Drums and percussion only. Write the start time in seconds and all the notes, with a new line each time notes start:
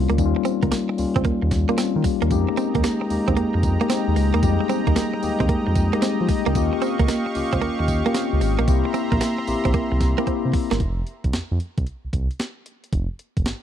0.09 closed hi-hat
0.18 kick, closed hi-hat, tambourine
0.45 closed hi-hat, tambourine
0.63 kick, closed hi-hat
0.71 snare, closed hi-hat, tambourine
0.98 open hi-hat, tambourine
1.16 kick, closed hi-hat
1.25 kick, closed hi-hat
1.51 kick, snare, closed hi-hat, tambourine
1.69 closed hi-hat
1.78 snare, closed hi-hat, tambourine
2.04 kick, open hi-hat, tambourine
2.22 closed hi-hat
2.31 kick, closed hi-hat, tambourine
2.57 closed hi-hat, tambourine
2.75 kick, closed hi-hat
2.84 snare, closed hi-hat, tambourine
3.10 open hi-hat, tambourine
3.28 kick, closed hi-hat
3.37 closed hi-hat
3.63 kick, closed hi-hat, tambourine
3.81 closed hi-hat
3.90 snare, closed hi-hat, tambourine
4.16 open hi-hat, tambourine
4.34 closed hi-hat
4.43 kick, closed hi-hat, tambourine
4.69 closed hi-hat, tambourine
4.87 kick, closed hi-hat
4.96 snare, closed hi-hat, tambourine
5.23 open hi-hat, tambourine
5.40 kick, closed hi-hat
5.49 kick, closed hi-hat
5.75 kick, closed hi-hat, tambourine
5.93 closed hi-hat
6.02 snare, closed hi-hat, tambourine
6.28 kick, open hi-hat, tambourine
6.46 closed hi-hat
6.55 kick, closed hi-hat, tambourine
6.82 closed hi-hat, tambourine
6.99 kick, closed hi-hat
7.08 snare, closed hi-hat, tambourine
7.35 open hi-hat, tambourine
7.53 kick, closed hi-hat
7.62 closed hi-hat
7.88 kick, closed hi-hat, tambourine
8.06 closed hi-hat
8.14 snare, closed hi-hat, tambourine
8.41 open hi-hat, tambourine
8.59 closed hi-hat
8.68 kick, closed hi-hat, tambourine
8.94 closed hi-hat, tambourine
9.12 kick, closed hi-hat
9.21 snare, closed hi-hat, tambourine
9.47 open hi-hat, tambourine
9.65 kick, closed hi-hat
9.74 kick, closed hi-hat
10.00 kick, snare, closed hi-hat, tambourine
10.18 closed hi-hat
10.27 kick, closed hi-hat
10.53 kick, open hi-hat
10.71 snare, closed hi-hat
10.80 kick, closed hi-hat
11.07 closed hi-hat
11.24 kick, closed hi-hat
11.33 snare, closed hi-hat
11.60 closed hi-hat
11.78 kick, closed hi-hat
11.87 closed hi-hat
12.13 kick, closed hi-hat
12.31 closed hi-hat
12.39 snare, closed hi-hat
12.66 closed hi-hat
12.84 closed hi-hat
12.93 kick, closed hi-hat
13.19 closed hi-hat
13.37 kick, closed hi-hat
13.46 snare, closed hi-hat